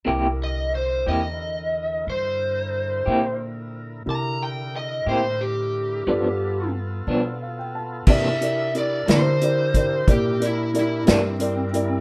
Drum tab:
CC |------------|------------|x-----------|
HH |------------|------------|-xxxxxxxxxxx|
SD |------------|------------|---o-----o--|
BD |------------|------------|o----oo-----|